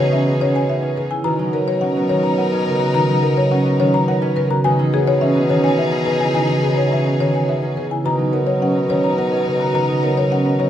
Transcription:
Already playing: B2 C#3 D#3 E3 B3 C#4 D#4 G#4
0.00 C#5
0.12 E3 C#4 E5
0.26 B3 G#4
0.40 D#3 C#4 C#5
0.55 C#5 G#5
0.68 B3 G#4 E5
0.82 C#4 B4
0.96 C#3 G#4 B4
1.11 E4 G#5
1.24 B2 D#3 D#4 A#4 A#5
1.39 F#3 D#4
1.53 B3 A#4 C#5
1.68 A#4 C#5
1.81 F#3 C#4 F#5
1.96 B3 A#4
2.09 D#3 C#4 C#5
2.23 C#5 A#5
2.38 B3 A#4 F#5
2.53 C#4 B4
2.65 C#3 A#4 B4
2.80 F#4 A#5
2.94 D#3 D#4 A#5
3.09 F#3 D#4
3.23 B3 A#4 C#5
3.37 A#4 C#5
3.51 F#3 C#4 F#5
3.65 B3 A#4
3.80 D#3 C#4 C#5
3.94 C#5 A#5
4.08 B3 A#4 F#5
4.22 C#4 B4
4.36 C#3 A#4 B4
4.51 F#4 A#5
4.64 B2 D#3 D#4 G#4 G#5
4.79 E3 D#4
4.93 B3 G#4 C#5
5.07 G#4 C#5
5.21 E3 C#4 E5
5.36 B3 G#4
5.49 D#3 C#4 C#5
5.64 C#5 G#5
5.78 B3 G#4 E5
5.92 C#4 B4
6.06 C#3 G#4 B4
6.20 E4 G#5
6.34 D#3 D#4 G#5
6.49 E3 D#4
6.63 B3 G#4 C#5
6.77 G#4 C#5
6.91 E3 C#4 E5
7.05 B3 G#4
7.20 D#3 C#4 C#5
7.34 C#5 G#5
7.48 B3 G#4 E5
7.62 C#4 B4
7.76 C#3 G#4 B4
7.90 E4 G#5
8.05 B2 D#3 D#4 A#4 A#5
8.18 F#3 D#4
8.33 B3 A#4 C#5
8.47 A#4 C#5
8.60 F#3 C#4 F#5
8.75 B3 A#4
8.89 D#3 C#4 C#5
9.03 C#5 A#5
9.17 B3 A#4 F#5
9.32 C#4 B4
9.46 C#3 A#4 B4
9.60 F#4 A#5
9.74 D#3 D#4 A#5
9.89 F#3 D#4
10.03 B3 A#4 C#5
10.16 A#4 C#5
10.30 F#3 C#4 F#5
10.45 B3 A#4
10.59 D#3 C#4 C#5

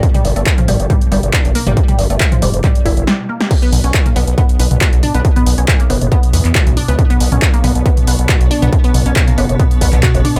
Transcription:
Already playing: B2 B3
0.03 kick, closed hi-hat
0.14 G3, closed hi-hat, mid tom
0.25 G1, open hi-hat
0.36 G1 A3, closed hi-hat
0.46 kick, clap, closed hi-hat
0.58 F3, closed hi-hat, mid tom
0.68 G1 G3, mid tom, open hi-hat
0.80 G1, closed hi-hat
0.90 G3, kick, closed hi-hat, mid tom
1.01 closed hi-hat
1.12 G1 G3, open hi-hat
1.23 G1, closed hi-hat
1.33 D4, kick, clap, closed hi-hat
1.45 G1, closed hi-hat
1.55 A#3, open hi-hat
1.67 G1 G3, closed hi-hat, mid tom
1.77 kick, closed hi-hat
1.88 G3, closed hi-hat, mid tom
1.99 G1, open hi-hat
2.10 G1 A3, closed hi-hat
2.20 kick, clap, closed hi-hat
2.32 F3, closed hi-hat, mid tom
2.42 F1 G3, mid tom, open hi-hat
2.54 F1, closed hi-hat
2.64 G3, kick, clap, closed hi-hat, mid tom
2.75 closed hi-hat
2.85 G1 E4, kick, open hi-hat
2.97 G1, closed hi-hat
3.07 G3, snare
3.29 A#3
3.41 G4, snare
3.51 B2 B3, kick, closed hi-hat, crash
3.62 B3, closed hi-hat
3.72 B1, mid tom, open hi-hat
3.84 B1 C#4, closed hi-hat
3.94 kick, clap, closed hi-hat
4.06 A#3, closed hi-hat, mid tom
4.16 B1 B3, open hi-hat
4.27 B1, closed hi-hat
4.38 B3, kick, closed hi-hat, mid tom
4.49 closed hi-hat
4.59 B1 B3, open hi-hat
4.71 B1, closed hi-hat, mid tom
4.81 F#4, kick, clap, closed hi-hat
4.93 B1, closed hi-hat
5.03 D4, mid tom, open hi-hat
5.14 B1 B3, closed hi-hat
5.25 kick, closed hi-hat
5.36 B3, closed hi-hat, mid tom
5.46 B1, open hi-hat
5.58 B1 C#4, closed hi-hat
5.68 kick, clap, closed hi-hat, mid tom
5.80 A#3, closed hi-hat
5.90 F#1 B3, open hi-hat
6.01 F#1, closed hi-hat, mid tom
6.12 B3, kick, closed hi-hat
6.23 closed hi-hat
6.33 E2 B3, mid tom, open hi-hat
6.45 E2, clap, closed hi-hat
6.55 F#4, kick, clap, closed hi-hat
6.67 C#2, closed hi-hat, mid tom
6.77 D4, open hi-hat
6.88 C#2 B3, closed hi-hat
6.99 kick, closed hi-hat, mid tom
7.10 B3, closed hi-hat
7.20 B1, open hi-hat
7.32 B1 C#4, closed hi-hat, mid tom
7.42 kick, clap, closed hi-hat
7.54 A#3, closed hi-hat
7.64 B1 B3, mid tom, open hi-hat
7.75 B1, closed hi-hat
7.86 B3, kick, closed hi-hat
7.97 closed hi-hat, mid tom
8.07 B1 B3, open hi-hat
8.19 B1, closed hi-hat
8.29 F#4, kick, clap, closed hi-hat, mid tom
8.41 B1, closed hi-hat
8.51 D4, open hi-hat
8.62 B1 B3, closed hi-hat, mid tom
8.73 kick, closed hi-hat
8.84 B3, closed hi-hat
8.94 B1, mid tom, open hi-hat
9.06 B1 C#4, closed hi-hat
9.16 kick, clap, closed hi-hat
9.28 A#3, closed hi-hat, mid tom
9.38 F#1 B3, open hi-hat
9.49 F#1, closed hi-hat
9.60 B3, kick, closed hi-hat, mid tom
9.71 closed hi-hat
9.81 B1 B3, kick, open hi-hat
9.93 B1, clap, closed hi-hat, mid tom
10.03 F#4, kick, clap, closed hi-hat
10.15 F#1, closed hi-hat
10.25 D4, mid tom, open hi-hat
10.36 F#1 B3, closed hi-hat

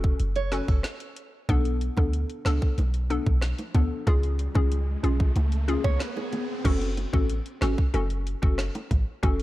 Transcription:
Already playing: F1 C#4 F#4 A4
0.04 kick
0.20 F#1, closed hi-hat
0.36 C#5, closed hi-hat
0.52 C#4 F#4 A4 B4, snare, closed hi-hat
0.68 F#1 A4, kick
0.83 cross-stick, snare, closed hi-hat
1.00 closed hi-hat
1.16 closed hi-hat
1.49 B1 B3 D4 A4, kick, closed hi-hat, riser, high bongo
1.65 closed hi-hat
1.81 closed hi-hat
1.97 D2 B3 D4 A4, kick, high bongo
2.13 closed hi-hat
2.30 closed hi-hat
2.45 C#2 B3 D4 A4, cross-stick, snare, closed hi-hat
2.62 kick
2.78 B1, closed hi-hat, high bongo
2.94 closed hi-hat
3.10 B3 D4 A4, closed hi-hat
3.26 B1, kick
3.41 cross-stick, snare, closed hi-hat
3.58 closed hi-hat, high bongo
3.75 D2 B3 D4 A4, kick, closed hi-hat, low bongo
4.07 C#2 C#4 F4 G#4, kick, closed hi-hat, high bongo
4.23 closed hi-hat
4.39 closed hi-hat
4.55 C#2 C#4 F4 G#4, kick, high bongo
4.72 closed hi-hat
5.03 B1 C#4 F4 G#4, closed hi-hat
5.20 kick
5.36 C#2, closed hi-hat, high bongo
5.52 closed hi-hat
5.68 C#4 F4 G#4, closed hi-hat
5.84 C#2 C#5, kick, cross-stick
6.00 B4, cross-stick, snare, closed hi-hat
6.16 G#4, high bongo
6.33 closed hi-hat, low bongo
6.64 F#1 C#4 F#4 A4, kick, closed hi-hat, crash, high bongo
6.81 closed hi-hat
6.97 closed hi-hat, high bongo
7.13 A1 C#4 F#4 A4, kick
7.29 closed hi-hat
7.46 closed hi-hat
7.61 G#1 C#4 F#4 A4, cross-stick, snare, closed hi-hat, low bongo
7.78 kick
7.94 F#1 C#4 F#4 A4, closed hi-hat, high bongo
8.10 closed hi-hat
8.27 closed hi-hat
8.42 F#1 C#4 F#4 A4, kick
8.58 cross-stick, snare, closed hi-hat
8.75 closed hi-hat, high bongo
8.91 A1, kick, closed hi-hat, low bongo
9.23 F#1 C#4 F#4 A4, kick, closed hi-hat, high bongo
9.40 closed hi-hat

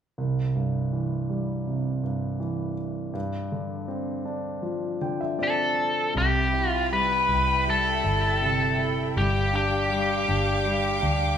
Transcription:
0.18 C2
0.55 G2
0.92 E3
1.30 G3
1.67 C3
2.04 G2
2.40 E3
3.14 G2
3.52 D3
3.88 C4
4.25 D4
4.62 F3
5.01 D3 G5
5.21 E5
5.39 C4 D5
5.43 A4
6.15 C2 C3 G4 E5 G5 B5
6.53 E4
6.70 F4
6.92 G3 B4
7.29 C2 E4
7.67 G3 A4
8.04 G1 E4
8.42 C3
8.78 E4
9.16 G1 G3 G4 F5 D6
9.53 D4 G4
9.90 G3
10.28 G1 D4
10.65 G3
11.02 D2 D4

